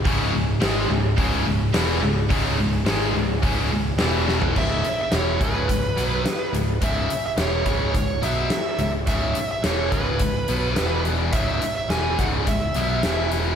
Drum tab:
CC |----------------|----------------|x---------------|----------------|
HH |o---o---o---o---|o---o---o---o---|--x-x-x-x-x-x-x-|x-x-x-x-x-x-x-x-|
SD |----o-------o---|----o-------o-o-|----o-------o---|----o-------o---|
FT |----------------|---------------o|----------------|----------------|
BD |o-------o-------|o-------o-------|o-----o-o-------|o-----o-o-------|

CC |----------------|----------------|
HH |x-x-x-x-x-x-x-x-|x-x-x-x-x-x-x-x-|
SD |----o-------o---|----o-------o---|
FT |----------------|----------------|
BD |o-----o-o-------|o-----o-o-------|